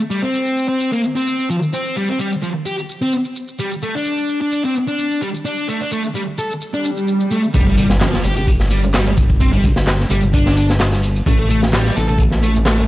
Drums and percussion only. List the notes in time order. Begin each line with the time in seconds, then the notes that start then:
0.11 shaker
0.34 shaker
0.46 shaker
0.57 shaker
0.80 shaker
0.93 shaker
1.04 shaker
1.16 shaker
1.27 shaker
1.39 shaker
1.50 shaker
1.62 shaker
1.73 shaker
1.86 shaker
1.97 shaker
2.20 shaker
2.32 shaker
2.43 shaker
2.66 shaker
2.78 shaker
2.89 shaker
3.02 shaker
3.12 shaker
3.25 shaker
3.36 shaker
3.48 shaker
3.59 shaker
3.71 shaker
3.82 shaker
4.05 shaker
4.18 shaker
4.29 shaker
4.52 shaker
4.65 shaker
4.75 shaker
4.88 shaker
4.99 shaker
5.11 shaker
5.22 shaker
5.34 shaker
5.45 shaker
5.58 shaker
5.68 shaker
5.92 shaker
6.04 shaker
6.15 shaker
6.38 shaker
6.50 shaker
6.61 shaker
6.74 shaker
6.84 shaker
6.97 shaker
7.08 shaker
7.20 shaker
7.31 shaker
7.43 shaker
7.54 kick, closed hi-hat, high bongo, shaker
7.67 high conga
7.78 closed hi-hat, ride, high conga, shaker
7.90 snare, shaker
8.01 snare, clap, closed hi-hat, high bongo, shaker
8.14 snare
8.24 closed hi-hat, ride, high conga, shaker
8.36 closed hi-hat, high bongo, high conga, shaker
8.47 kick, closed hi-hat, shaker
8.60 snare, shaker
8.70 closed hi-hat, ride, shaker
8.83 high bongo, low conga, shaker
8.94 snare, clap, closed hi-hat, shaker
9.06 low conga, shaker
9.17 kick, closed hi-hat, ride, high bongo, shaker
9.30 kick, shaker
9.40 kick, closed hi-hat, shaker
9.53 closed hi-hat, high conga, low conga
9.64 kick, closed hi-hat, ride, high bongo, high conga, shaker
9.76 snare, shaker
9.87 snare, clap, closed hi-hat, shaker
10.00 snare, high bongo
10.10 closed hi-hat, ride, high conga, shaker
10.22 high conga, shaker
10.34 kick, closed hi-hat, shaker
10.46 snare, high bongo, shaker
10.57 closed hi-hat, ride, shaker
10.69 snare, shaker
10.80 snare, clap, closed hi-hat, high bongo, shaker
10.92 snare, shaker
11.03 closed hi-hat, ride, shaker
11.16 closed hi-hat, shaker
11.26 kick, closed hi-hat, high bongo, shaker
11.39 high conga
11.50 closed hi-hat, ride, high conga, shaker
11.62 snare, high bongo, shaker
11.73 snare, clap, closed hi-hat, shaker
11.86 snare
11.96 closed hi-hat, ride, high conga, shaker
12.09 closed hi-hat, high bongo, high conga, shaker
12.18 kick, closed hi-hat, shaker
12.31 snare, shaker
12.43 closed hi-hat, ride, high bongo, shaker
12.55 low conga, shaker
12.65 snare, clap, closed hi-hat, shaker
12.79 low conga, shaker